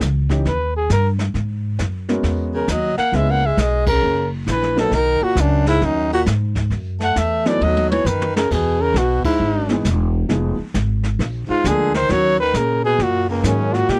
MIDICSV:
0, 0, Header, 1, 7, 480
1, 0, Start_track
1, 0, Key_signature, 5, "minor"
1, 0, Tempo, 448096
1, 1433, Time_signature, 4, 2, 24, 8
1, 14993, End_track
2, 0, Start_track
2, 0, Title_t, "Trumpet"
2, 0, Program_c, 0, 56
2, 511, Note_on_c, 0, 71, 68
2, 783, Note_off_c, 0, 71, 0
2, 821, Note_on_c, 0, 68, 66
2, 961, Note_off_c, 0, 68, 0
2, 992, Note_on_c, 0, 70, 68
2, 1167, Note_off_c, 0, 70, 0
2, 2737, Note_on_c, 0, 70, 63
2, 2909, Note_on_c, 0, 75, 70
2, 2925, Note_off_c, 0, 70, 0
2, 3183, Note_off_c, 0, 75, 0
2, 3190, Note_on_c, 0, 78, 87
2, 3385, Note_on_c, 0, 76, 73
2, 3401, Note_off_c, 0, 78, 0
2, 3544, Note_on_c, 0, 78, 83
2, 3560, Note_off_c, 0, 76, 0
2, 3707, Note_on_c, 0, 76, 70
2, 3723, Note_off_c, 0, 78, 0
2, 3863, Note_on_c, 0, 75, 63
2, 3879, Note_off_c, 0, 76, 0
2, 4148, Note_off_c, 0, 75, 0
2, 4154, Note_on_c, 0, 70, 85
2, 4593, Note_off_c, 0, 70, 0
2, 4831, Note_on_c, 0, 71, 77
2, 5100, Note_off_c, 0, 71, 0
2, 5140, Note_on_c, 0, 69, 83
2, 5301, Note_on_c, 0, 70, 92
2, 5318, Note_off_c, 0, 69, 0
2, 5611, Note_on_c, 0, 66, 84
2, 5627, Note_off_c, 0, 70, 0
2, 5793, Note_on_c, 0, 62, 72
2, 5810, Note_off_c, 0, 66, 0
2, 6081, Note_off_c, 0, 62, 0
2, 6089, Note_on_c, 0, 64, 98
2, 6271, Note_on_c, 0, 63, 80
2, 6287, Note_off_c, 0, 64, 0
2, 6560, Note_off_c, 0, 63, 0
2, 6572, Note_on_c, 0, 66, 84
2, 6662, Note_off_c, 0, 66, 0
2, 7539, Note_on_c, 0, 78, 82
2, 7695, Note_on_c, 0, 76, 72
2, 7711, Note_off_c, 0, 78, 0
2, 8010, Note_on_c, 0, 74, 79
2, 8026, Note_off_c, 0, 76, 0
2, 8172, Note_on_c, 0, 75, 83
2, 8188, Note_off_c, 0, 74, 0
2, 8459, Note_off_c, 0, 75, 0
2, 8465, Note_on_c, 0, 73, 76
2, 8640, Note_on_c, 0, 71, 66
2, 8656, Note_off_c, 0, 73, 0
2, 8945, Note_off_c, 0, 71, 0
2, 8953, Note_on_c, 0, 70, 76
2, 9135, Note_on_c, 0, 68, 72
2, 9151, Note_off_c, 0, 70, 0
2, 9446, Note_on_c, 0, 70, 84
2, 9462, Note_off_c, 0, 68, 0
2, 9614, Note_on_c, 0, 66, 74
2, 9630, Note_off_c, 0, 70, 0
2, 9905, Note_off_c, 0, 66, 0
2, 9911, Note_on_c, 0, 64, 73
2, 10511, Note_off_c, 0, 64, 0
2, 12317, Note_on_c, 0, 65, 84
2, 12505, Note_on_c, 0, 68, 82
2, 12521, Note_off_c, 0, 65, 0
2, 12799, Note_off_c, 0, 68, 0
2, 12813, Note_on_c, 0, 72, 87
2, 12977, Note_on_c, 0, 73, 97
2, 12994, Note_off_c, 0, 72, 0
2, 13276, Note_off_c, 0, 73, 0
2, 13283, Note_on_c, 0, 71, 89
2, 13459, Note_on_c, 0, 70, 78
2, 13475, Note_off_c, 0, 71, 0
2, 13754, Note_off_c, 0, 70, 0
2, 13760, Note_on_c, 0, 68, 86
2, 13955, Note_on_c, 0, 66, 77
2, 13972, Note_off_c, 0, 68, 0
2, 14242, Note_off_c, 0, 66, 0
2, 14248, Note_on_c, 0, 58, 63
2, 14421, Note_on_c, 0, 61, 75
2, 14438, Note_off_c, 0, 58, 0
2, 14719, Note_on_c, 0, 66, 86
2, 14735, Note_off_c, 0, 61, 0
2, 14888, Note_on_c, 0, 67, 87
2, 14904, Note_off_c, 0, 66, 0
2, 14993, Note_off_c, 0, 67, 0
2, 14993, End_track
3, 0, Start_track
3, 0, Title_t, "Grand piano"
3, 0, Program_c, 1, 0
3, 314, Note_on_c, 1, 61, 61
3, 319, Note_on_c, 1, 52, 62
3, 319, Note_on_c, 1, 63, 57
3, 322, Note_on_c, 1, 67, 71
3, 462, Note_off_c, 1, 61, 0
3, 465, Note_off_c, 1, 52, 0
3, 465, Note_off_c, 1, 63, 0
3, 466, Note_off_c, 1, 67, 0
3, 2235, Note_on_c, 1, 56, 66
3, 2239, Note_on_c, 1, 61, 62
3, 2241, Note_on_c, 1, 59, 62
3, 2244, Note_on_c, 1, 70, 71
3, 2245, Note_on_c, 1, 66, 63
3, 2842, Note_off_c, 1, 56, 0
3, 2844, Note_off_c, 1, 61, 0
3, 2845, Note_off_c, 1, 59, 0
3, 2847, Note_off_c, 1, 66, 0
3, 2847, Note_off_c, 1, 70, 0
3, 3362, Note_on_c, 1, 56, 60
3, 3363, Note_on_c, 1, 59, 51
3, 3365, Note_on_c, 1, 61, 57
3, 3368, Note_on_c, 1, 64, 53
3, 3368, Note_on_c, 1, 71, 64
3, 3635, Note_off_c, 1, 56, 0
3, 3636, Note_off_c, 1, 59, 0
3, 3637, Note_off_c, 1, 61, 0
3, 3638, Note_off_c, 1, 64, 0
3, 3638, Note_off_c, 1, 71, 0
3, 5104, Note_on_c, 1, 54, 68
3, 5104, Note_on_c, 1, 58, 61
3, 5106, Note_on_c, 1, 63, 60
3, 5108, Note_on_c, 1, 59, 55
3, 5109, Note_on_c, 1, 70, 75
3, 5252, Note_off_c, 1, 54, 0
3, 5252, Note_off_c, 1, 58, 0
3, 5253, Note_off_c, 1, 63, 0
3, 5254, Note_off_c, 1, 59, 0
3, 5255, Note_off_c, 1, 70, 0
3, 7985, Note_on_c, 1, 59, 62
3, 7988, Note_on_c, 1, 63, 62
3, 7988, Note_on_c, 1, 69, 77
3, 7989, Note_on_c, 1, 54, 69
3, 7992, Note_on_c, 1, 57, 65
3, 8596, Note_off_c, 1, 59, 0
3, 8597, Note_off_c, 1, 63, 0
3, 8598, Note_off_c, 1, 54, 0
3, 8598, Note_off_c, 1, 69, 0
3, 8600, Note_off_c, 1, 57, 0
3, 10386, Note_on_c, 1, 52, 64
3, 10387, Note_on_c, 1, 56, 60
3, 10389, Note_on_c, 1, 63, 59
3, 10390, Note_on_c, 1, 59, 62
3, 10398, Note_on_c, 1, 68, 67
3, 10534, Note_off_c, 1, 52, 0
3, 10535, Note_off_c, 1, 56, 0
3, 10536, Note_off_c, 1, 59, 0
3, 10536, Note_off_c, 1, 63, 0
3, 10540, Note_off_c, 1, 68, 0
3, 11020, Note_on_c, 1, 56, 56
3, 11022, Note_on_c, 1, 53, 61
3, 11023, Note_on_c, 1, 63, 57
3, 11028, Note_on_c, 1, 68, 67
3, 11030, Note_on_c, 1, 59, 56
3, 11305, Note_off_c, 1, 56, 0
3, 11306, Note_off_c, 1, 53, 0
3, 11306, Note_off_c, 1, 63, 0
3, 11309, Note_off_c, 1, 68, 0
3, 11310, Note_off_c, 1, 59, 0
3, 12482, Note_on_c, 1, 62, 53
3, 12483, Note_on_c, 1, 56, 53
3, 12484, Note_on_c, 1, 53, 60
3, 12485, Note_on_c, 1, 68, 68
3, 12488, Note_on_c, 1, 58, 53
3, 12757, Note_off_c, 1, 56, 0
3, 12757, Note_off_c, 1, 62, 0
3, 12758, Note_off_c, 1, 53, 0
3, 12758, Note_off_c, 1, 68, 0
3, 12759, Note_off_c, 1, 58, 0
3, 12954, Note_on_c, 1, 54, 62
3, 12955, Note_on_c, 1, 51, 67
3, 12957, Note_on_c, 1, 58, 62
3, 12957, Note_on_c, 1, 61, 58
3, 12962, Note_on_c, 1, 66, 66
3, 13233, Note_off_c, 1, 51, 0
3, 13233, Note_off_c, 1, 54, 0
3, 13234, Note_off_c, 1, 58, 0
3, 13234, Note_off_c, 1, 61, 0
3, 13237, Note_off_c, 1, 66, 0
3, 14402, Note_on_c, 1, 51, 66
3, 14408, Note_on_c, 1, 58, 52
3, 14410, Note_on_c, 1, 54, 55
3, 14416, Note_on_c, 1, 61, 60
3, 14420, Note_on_c, 1, 68, 67
3, 14678, Note_off_c, 1, 51, 0
3, 14681, Note_off_c, 1, 58, 0
3, 14682, Note_off_c, 1, 54, 0
3, 14685, Note_off_c, 1, 61, 0
3, 14687, Note_off_c, 1, 68, 0
3, 14993, End_track
4, 0, Start_track
4, 0, Title_t, "Baritone saxophone"
4, 0, Program_c, 2, 67
4, 2722, Note_on_c, 2, 49, 58
4, 2888, Note_on_c, 2, 54, 63
4, 2904, Note_off_c, 2, 49, 0
4, 3184, Note_off_c, 2, 54, 0
4, 3190, Note_on_c, 2, 58, 68
4, 3368, Note_on_c, 2, 56, 60
4, 3384, Note_off_c, 2, 58, 0
4, 3529, Note_on_c, 2, 58, 63
4, 3545, Note_off_c, 2, 56, 0
4, 3701, Note_on_c, 2, 56, 57
4, 3717, Note_off_c, 2, 58, 0
4, 3869, Note_off_c, 2, 56, 0
4, 3869, Note_on_c, 2, 56, 59
4, 4159, Note_off_c, 2, 56, 0
4, 4185, Note_on_c, 2, 49, 70
4, 4609, Note_off_c, 2, 49, 0
4, 4805, Note_on_c, 2, 52, 65
4, 5086, Note_off_c, 2, 52, 0
4, 5124, Note_on_c, 2, 47, 71
4, 5287, Note_on_c, 2, 51, 80
4, 5303, Note_off_c, 2, 47, 0
4, 5593, Note_on_c, 2, 46, 71
4, 5609, Note_off_c, 2, 51, 0
4, 5766, Note_on_c, 2, 42, 61
4, 5782, Note_off_c, 2, 46, 0
4, 6064, Note_off_c, 2, 42, 0
4, 6071, Note_on_c, 2, 44, 78
4, 6249, Note_on_c, 2, 42, 68
4, 6265, Note_off_c, 2, 44, 0
4, 6549, Note_off_c, 2, 42, 0
4, 6560, Note_on_c, 2, 46, 70
4, 6706, Note_off_c, 2, 46, 0
4, 7507, Note_on_c, 2, 57, 72
4, 7694, Note_off_c, 2, 57, 0
4, 7694, Note_on_c, 2, 57, 65
4, 7996, Note_on_c, 2, 52, 69
4, 8012, Note_off_c, 2, 57, 0
4, 8174, Note_on_c, 2, 54, 78
4, 8190, Note_off_c, 2, 52, 0
4, 8472, Note_off_c, 2, 54, 0
4, 8481, Note_on_c, 2, 52, 68
4, 8650, Note_on_c, 2, 51, 60
4, 8666, Note_off_c, 2, 52, 0
4, 8950, Note_off_c, 2, 51, 0
4, 8958, Note_on_c, 2, 49, 65
4, 9116, Note_on_c, 2, 47, 62
4, 9132, Note_off_c, 2, 49, 0
4, 9429, Note_on_c, 2, 49, 73
4, 9445, Note_off_c, 2, 47, 0
4, 9620, Note_on_c, 2, 47, 63
4, 9636, Note_off_c, 2, 49, 0
4, 9902, Note_off_c, 2, 47, 0
4, 9908, Note_on_c, 2, 44, 62
4, 10510, Note_off_c, 2, 44, 0
4, 12304, Note_on_c, 2, 44, 69
4, 12491, Note_on_c, 2, 50, 72
4, 12507, Note_off_c, 2, 44, 0
4, 12783, Note_off_c, 2, 50, 0
4, 12790, Note_on_c, 2, 51, 77
4, 12983, Note_on_c, 2, 54, 82
4, 12999, Note_off_c, 2, 51, 0
4, 13272, Note_off_c, 2, 54, 0
4, 13279, Note_on_c, 2, 51, 71
4, 13468, Note_on_c, 2, 49, 68
4, 13484, Note_off_c, 2, 51, 0
4, 13756, Note_off_c, 2, 49, 0
4, 13762, Note_on_c, 2, 47, 70
4, 13933, Note_on_c, 2, 46, 72
4, 13949, Note_off_c, 2, 47, 0
4, 14228, Note_off_c, 2, 46, 0
4, 14235, Note_on_c, 2, 37, 56
4, 14411, Note_on_c, 2, 42, 62
4, 14427, Note_off_c, 2, 37, 0
4, 14712, Note_on_c, 2, 46, 72
4, 14728, Note_off_c, 2, 42, 0
4, 14904, Note_off_c, 2, 46, 0
4, 14904, Note_on_c, 2, 46, 69
4, 14993, Note_off_c, 2, 46, 0
4, 14993, End_track
5, 0, Start_track
5, 0, Title_t, "Upright bass"
5, 0, Program_c, 3, 32
5, 6, Note_on_c, 3, 37, 79
5, 466, Note_off_c, 3, 37, 0
5, 488, Note_on_c, 3, 39, 73
5, 946, Note_off_c, 3, 39, 0
5, 963, Note_on_c, 3, 43, 88
5, 1423, Note_off_c, 3, 43, 0
5, 1436, Note_on_c, 3, 44, 77
5, 1899, Note_off_c, 3, 44, 0
5, 1920, Note_on_c, 3, 42, 75
5, 2380, Note_off_c, 3, 42, 0
5, 2391, Note_on_c, 3, 40, 77
5, 2855, Note_off_c, 3, 40, 0
5, 2871, Note_on_c, 3, 39, 90
5, 3160, Note_off_c, 3, 39, 0
5, 3344, Note_on_c, 3, 37, 71
5, 3811, Note_off_c, 3, 37, 0
5, 3827, Note_on_c, 3, 35, 83
5, 4292, Note_off_c, 3, 35, 0
5, 4314, Note_on_c, 3, 30, 76
5, 4776, Note_off_c, 3, 30, 0
5, 4785, Note_on_c, 3, 34, 87
5, 5251, Note_off_c, 3, 34, 0
5, 5264, Note_on_c, 3, 35, 72
5, 5555, Note_off_c, 3, 35, 0
5, 5734, Note_on_c, 3, 37, 83
5, 6205, Note_off_c, 3, 37, 0
5, 6229, Note_on_c, 3, 39, 82
5, 6693, Note_off_c, 3, 39, 0
5, 6714, Note_on_c, 3, 44, 91
5, 7175, Note_off_c, 3, 44, 0
5, 7180, Note_on_c, 3, 42, 79
5, 7648, Note_off_c, 3, 42, 0
5, 7668, Note_on_c, 3, 40, 80
5, 8133, Note_off_c, 3, 40, 0
5, 8151, Note_on_c, 3, 39, 71
5, 8614, Note_off_c, 3, 39, 0
5, 8622, Note_on_c, 3, 42, 90
5, 9090, Note_off_c, 3, 42, 0
5, 9116, Note_on_c, 3, 40, 74
5, 9571, Note_off_c, 3, 40, 0
5, 9577, Note_on_c, 3, 35, 88
5, 9872, Note_off_c, 3, 35, 0
5, 10066, Note_on_c, 3, 32, 74
5, 10533, Note_off_c, 3, 32, 0
5, 10551, Note_on_c, 3, 28, 89
5, 11015, Note_off_c, 3, 28, 0
5, 11028, Note_on_c, 3, 29, 76
5, 11318, Note_off_c, 3, 29, 0
5, 11508, Note_on_c, 3, 32, 85
5, 11975, Note_off_c, 3, 32, 0
5, 11989, Note_on_c, 3, 34, 84
5, 12279, Note_off_c, 3, 34, 0
5, 12472, Note_on_c, 3, 38, 92
5, 12937, Note_off_c, 3, 38, 0
5, 12954, Note_on_c, 3, 39, 81
5, 13418, Note_off_c, 3, 39, 0
5, 13430, Note_on_c, 3, 46, 83
5, 13897, Note_off_c, 3, 46, 0
5, 13911, Note_on_c, 3, 42, 78
5, 14378, Note_off_c, 3, 42, 0
5, 14392, Note_on_c, 3, 44, 90
5, 14859, Note_off_c, 3, 44, 0
5, 14875, Note_on_c, 3, 46, 76
5, 14993, Note_off_c, 3, 46, 0
5, 14993, End_track
6, 0, Start_track
6, 0, Title_t, "Muted upright bass strokes"
6, 3185, Note_on_c, 9, 29, 38
6, 3292, Note_off_c, 9, 29, 0
6, 5586, Note_on_c, 9, 29, 37
6, 5693, Note_off_c, 9, 29, 0
6, 9901, Note_on_c, 9, 29, 38
6, 10008, Note_off_c, 9, 29, 0
6, 11336, Note_on_c, 9, 29, 38
6, 11443, Note_off_c, 9, 29, 0
6, 12308, Note_on_c, 9, 29, 38
6, 12415, Note_off_c, 9, 29, 0
6, 14993, End_track
7, 0, Start_track
7, 0, Title_t, "Drums"
7, 7, Note_on_c, 9, 38, 57
7, 10, Note_on_c, 9, 44, 49
7, 115, Note_off_c, 9, 38, 0
7, 117, Note_off_c, 9, 44, 0
7, 316, Note_on_c, 9, 36, 54
7, 317, Note_on_c, 9, 38, 37
7, 423, Note_off_c, 9, 36, 0
7, 424, Note_off_c, 9, 38, 0
7, 483, Note_on_c, 9, 25, 43
7, 483, Note_on_c, 9, 38, 39
7, 590, Note_off_c, 9, 38, 0
7, 960, Note_on_c, 9, 38, 57
7, 962, Note_on_c, 9, 44, 56
7, 1067, Note_off_c, 9, 38, 0
7, 1069, Note_off_c, 9, 44, 0
7, 1272, Note_on_c, 9, 38, 46
7, 1379, Note_off_c, 9, 38, 0
7, 1438, Note_off_c, 9, 25, 0
7, 1438, Note_on_c, 9, 25, 45
7, 1438, Note_on_c, 9, 38, 39
7, 1545, Note_off_c, 9, 38, 0
7, 1915, Note_on_c, 9, 38, 59
7, 1917, Note_on_c, 9, 44, 59
7, 2022, Note_off_c, 9, 38, 0
7, 2024, Note_off_c, 9, 44, 0
7, 2233, Note_on_c, 9, 38, 37
7, 2340, Note_off_c, 9, 38, 0
7, 2393, Note_off_c, 9, 25, 0
7, 2393, Note_on_c, 9, 25, 48
7, 2393, Note_on_c, 9, 38, 43
7, 2500, Note_off_c, 9, 38, 0
7, 2867, Note_on_c, 9, 38, 58
7, 2869, Note_on_c, 9, 44, 60
7, 2974, Note_off_c, 9, 38, 0
7, 2977, Note_off_c, 9, 44, 0
7, 3187, Note_on_c, 9, 38, 37
7, 3294, Note_off_c, 9, 38, 0
7, 3353, Note_off_c, 9, 25, 0
7, 3353, Note_on_c, 9, 25, 38
7, 3353, Note_on_c, 9, 38, 40
7, 3461, Note_off_c, 9, 38, 0
7, 3830, Note_on_c, 9, 38, 58
7, 3832, Note_on_c, 9, 44, 49
7, 3937, Note_off_c, 9, 38, 0
7, 3940, Note_off_c, 9, 44, 0
7, 4142, Note_on_c, 9, 36, 84
7, 4142, Note_on_c, 9, 49, 72
7, 4249, Note_off_c, 9, 36, 0
7, 4249, Note_off_c, 9, 49, 0
7, 4315, Note_off_c, 9, 25, 0
7, 4315, Note_on_c, 9, 25, 49
7, 4791, Note_on_c, 9, 38, 57
7, 4794, Note_on_c, 9, 44, 54
7, 4899, Note_off_c, 9, 38, 0
7, 4901, Note_off_c, 9, 44, 0
7, 4949, Note_on_c, 9, 38, 29
7, 5056, Note_off_c, 9, 38, 0
7, 5111, Note_on_c, 9, 38, 40
7, 5218, Note_off_c, 9, 38, 0
7, 5265, Note_off_c, 9, 25, 0
7, 5265, Note_on_c, 9, 25, 43
7, 5265, Note_on_c, 9, 38, 42
7, 5372, Note_off_c, 9, 38, 0
7, 5745, Note_on_c, 9, 38, 60
7, 5747, Note_on_c, 9, 44, 58
7, 5852, Note_off_c, 9, 38, 0
7, 5854, Note_off_c, 9, 44, 0
7, 6060, Note_on_c, 9, 38, 40
7, 6167, Note_off_c, 9, 38, 0
7, 6226, Note_off_c, 9, 25, 0
7, 6226, Note_on_c, 9, 25, 47
7, 6226, Note_on_c, 9, 38, 44
7, 6333, Note_off_c, 9, 38, 0
7, 6707, Note_on_c, 9, 38, 59
7, 6709, Note_on_c, 9, 44, 54
7, 6814, Note_off_c, 9, 38, 0
7, 6816, Note_off_c, 9, 44, 0
7, 7019, Note_on_c, 9, 36, 53
7, 7023, Note_on_c, 9, 38, 40
7, 7126, Note_off_c, 9, 36, 0
7, 7130, Note_off_c, 9, 38, 0
7, 7187, Note_off_c, 9, 25, 0
7, 7187, Note_on_c, 9, 25, 48
7, 7187, Note_on_c, 9, 38, 43
7, 7294, Note_off_c, 9, 38, 0
7, 7499, Note_on_c, 9, 38, 34
7, 7606, Note_off_c, 9, 38, 0
7, 7669, Note_on_c, 9, 38, 60
7, 7671, Note_on_c, 9, 44, 51
7, 7776, Note_off_c, 9, 38, 0
7, 7778, Note_off_c, 9, 44, 0
7, 7984, Note_on_c, 9, 38, 41
7, 8091, Note_off_c, 9, 38, 0
7, 8152, Note_on_c, 9, 48, 46
7, 8259, Note_off_c, 9, 48, 0
7, 8318, Note_on_c, 9, 48, 46
7, 8425, Note_off_c, 9, 48, 0
7, 8478, Note_on_c, 9, 48, 67
7, 8585, Note_off_c, 9, 48, 0
7, 8633, Note_on_c, 9, 47, 62
7, 8636, Note_on_c, 9, 44, 59
7, 8741, Note_off_c, 9, 47, 0
7, 8743, Note_off_c, 9, 44, 0
7, 8800, Note_on_c, 9, 47, 65
7, 8907, Note_off_c, 9, 47, 0
7, 8959, Note_on_c, 9, 38, 83
7, 9067, Note_off_c, 9, 38, 0
7, 9113, Note_on_c, 9, 36, 73
7, 9116, Note_off_c, 9, 25, 0
7, 9116, Note_on_c, 9, 25, 46
7, 9116, Note_on_c, 9, 38, 43
7, 9116, Note_on_c, 9, 49, 71
7, 9220, Note_off_c, 9, 36, 0
7, 9223, Note_off_c, 9, 38, 0
7, 9223, Note_off_c, 9, 49, 0
7, 9592, Note_on_c, 9, 38, 58
7, 9594, Note_on_c, 9, 44, 47
7, 9699, Note_off_c, 9, 38, 0
7, 9701, Note_off_c, 9, 44, 0
7, 9903, Note_on_c, 9, 36, 84
7, 9903, Note_on_c, 9, 49, 71
7, 10010, Note_off_c, 9, 36, 0
7, 10010, Note_off_c, 9, 49, 0
7, 10069, Note_off_c, 9, 25, 0
7, 10069, Note_on_c, 9, 25, 42
7, 10374, Note_on_c, 9, 38, 38
7, 10482, Note_off_c, 9, 38, 0
7, 10545, Note_on_c, 9, 38, 63
7, 10547, Note_on_c, 9, 44, 56
7, 10652, Note_off_c, 9, 38, 0
7, 10654, Note_off_c, 9, 44, 0
7, 11023, Note_off_c, 9, 25, 0
7, 11023, Note_on_c, 9, 25, 50
7, 11023, Note_on_c, 9, 38, 44
7, 11130, Note_off_c, 9, 38, 0
7, 11507, Note_on_c, 9, 38, 59
7, 11509, Note_on_c, 9, 44, 54
7, 11614, Note_off_c, 9, 38, 0
7, 11616, Note_off_c, 9, 44, 0
7, 11817, Note_on_c, 9, 38, 37
7, 11924, Note_off_c, 9, 38, 0
7, 11993, Note_off_c, 9, 25, 0
7, 11993, Note_on_c, 9, 25, 57
7, 11993, Note_on_c, 9, 38, 43
7, 12100, Note_off_c, 9, 38, 0
7, 12477, Note_on_c, 9, 38, 57
7, 12479, Note_on_c, 9, 44, 53
7, 12584, Note_off_c, 9, 38, 0
7, 12586, Note_off_c, 9, 44, 0
7, 12789, Note_on_c, 9, 38, 47
7, 12896, Note_off_c, 9, 38, 0
7, 12948, Note_off_c, 9, 25, 0
7, 12948, Note_on_c, 9, 25, 50
7, 12948, Note_on_c, 9, 38, 45
7, 13055, Note_off_c, 9, 38, 0
7, 13433, Note_on_c, 9, 38, 63
7, 13436, Note_on_c, 9, 44, 60
7, 13541, Note_off_c, 9, 38, 0
7, 13543, Note_off_c, 9, 44, 0
7, 13918, Note_off_c, 9, 25, 0
7, 13918, Note_on_c, 9, 25, 52
7, 13918, Note_on_c, 9, 38, 47
7, 14025, Note_off_c, 9, 38, 0
7, 14395, Note_on_c, 9, 38, 64
7, 14398, Note_on_c, 9, 44, 63
7, 14503, Note_off_c, 9, 38, 0
7, 14505, Note_off_c, 9, 44, 0
7, 14716, Note_on_c, 9, 38, 38
7, 14823, Note_off_c, 9, 38, 0
7, 14877, Note_off_c, 9, 25, 0
7, 14877, Note_on_c, 9, 25, 49
7, 14877, Note_on_c, 9, 38, 46
7, 14984, Note_off_c, 9, 38, 0
7, 14993, Note_off_c, 9, 25, 0
7, 14993, End_track
0, 0, End_of_file